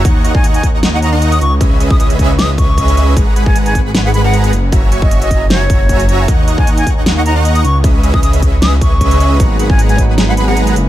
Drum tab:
HH |x-x-xxx-x-x-xxx-|x-x-xxx-x-x-xxx-|x-x-xxx-x-x-xxx-|x-x-xxx-x-x-xxx-|
SD |--------o-------|--------o-------|--------o-------|--------o-------|
BD |o--o--o---------|o--o--o---o-o---|o--o--o---------|o--o--o---o-o---|

HH |x-x-xxx-x-x-xxx-|x-x-xxx-x-x-xxx-|x-x-xxx-x-x-xxx-|
SD |--------o-------|--------o-------|--------o-------|
BD |o--o--o---------|o--o--o---o-o---|o--o--o---------|